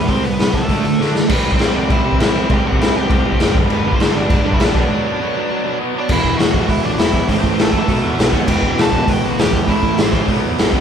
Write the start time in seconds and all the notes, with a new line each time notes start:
0.08 C2 C3 G3 C4 C5, kick, open hi-hat
0.24 C3 G3 B3 B4, open hi-hat
0.39 C2 C3 G3, snare, open hi-hat
0.53 C2 C3 G3 A3 A4, kick, open hi-hat
0.69 D2 D3 A3 D4, kick, open hi-hat
0.84 D2 D3 A3, open hi-hat
0.99 D3 A3 D4, snare
1.15 D3 A3, snare
1.29 C2 C3 G3 B3 C4 B4, kick, crash
1.44 C2 C3 G3 C4
1.52 C4 C5, kick
1.59 C2 C3 G3 C4, snare, crash
1.74 C2 C3 G3 C4 D4 D5
1.89 C2 C3 G3 C4 E4 E5, kick, crash
2.04 C3 G3 C4
2.12 kick
2.19 C2 C3 G3 C4 E5, snare, crash
2.24 E4
2.34 C2 C3 G3 C4
2.49 C2 C3 G3 C4, kick, crash
2.53 G4 G5
2.65 C2 C3 G3 C4 F#4 F#5
2.72 kick
2.79 C2 C3 G3 C4 E4 E5, snare, crash
2.95 C2 C3 G3 C4 G4 G5
3.10 C2 C3 G3 C4, kick, crash
3.24 C2 C3 G3 C4
3.32 kick
3.40 F#1 C3 G3 C4, snare, crash
3.55 G1 G2 D3 G3, kick
3.70 G1 G2 D3 G3 B3 B4, crash
3.85 G1 G2 D3 G3
3.92 C4 C5, kick
4.00 G1 G2 D3 G3, snare, crash
4.15 G1 G2 D3 G3 D4 D5
4.30 G1 G2 D3 G3, kick, crash
4.44 G2 D3 G3
4.52 E4 E5, kick
4.60 A#1 G2 D3 G3 D4, snare, crash
4.64 D5
4.74 B1 B2 F#3 B3 D4 D5, kick
4.91 B2 F#3 B3
5.06 B2 F#3 B3
5.22 B2 F#3 B3
5.36 B2 F#3 B3
5.51 B2 F#3 B3
5.66 B2 F#3 B3
5.80 B2 F#3 B3
5.95 B2 F#3 B3 D4
6.00 D5
6.09 E1 E2 B2 E4, kick, crash
6.13 E3 E5
6.24 E1, kick
6.38 E1 F#4 F#5, snare, open hi-hat
6.54 E2 B2 E3, kick
6.69 E1 E4 E5, kick, open hi-hat
6.84 A1 D4 D5
6.98 E1 E4 E5, snare, open hi-hat
7.13 E2, kick
7.28 A1 A2 E3 A3 C4 C5, kick, open hi-hat
7.44 A1, kick
7.58 A1 A3 A4, snare, open hi-hat
7.73 A2 E3 A3, kick
7.88 B1 B2 F#3 B3, kick, open hi-hat
8.04 E2
8.19 B1, snare, open hi-hat
8.32 D#2 B2 F#3 B3 F#4 F#5, kick
8.47 E1 E2 B2 E3 G4 G5, kick, crash
8.63 E1, kick
8.77 E1 A4 A5, snare, open hi-hat
8.91 E2 B2 E3, kick
9.08 E1 G4 G5, kick, open hi-hat
9.24 A1 F#4 F#5
9.38 E1 G4 G5, snare, open hi-hat
9.52 E2, kick
9.67 A1 A2 E3 A3 E4 E5, kick, open hi-hat
9.83 A1, kick
9.97 A1 C4 C5, snare, open hi-hat
10.13 A2 E3 A3, kick
10.28 B1 B2 F#3 B3, kick, open hi-hat
10.45 E2
10.58 B1, snare, open hi-hat
10.73 F#2 B2 F#3 B3, kick